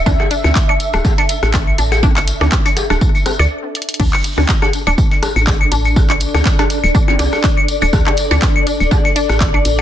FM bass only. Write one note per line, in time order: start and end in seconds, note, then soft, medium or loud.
0.06 0.15 D2 loud
0.45 0.52 D2 medium
0.94 1.01 D1 medium
1.43 1.72 A1 medium
1.78 2.33 A1 medium
2.41 2.48 D2 medium
2.90 2.97 D1 medium
3.39 3.47 D2 loud
4.00 4.08 D2 loud
4.38 4.45 D2 loud
4.87 4.94 D1 medium
5.36 5.65 A1 medium
5.72 6.27 A1 medium
6.35 6.42 D2 medium
6.84 6.91 D1 medium
7.19 7.28 C2 medium
7.82 7.89 D1 medium
7.93 8.02 D2 loud
8.31 8.38 D2 medium
8.81 8.88 D1 medium
9.30 9.59 A1 medium
9.65 9.82 A1 medium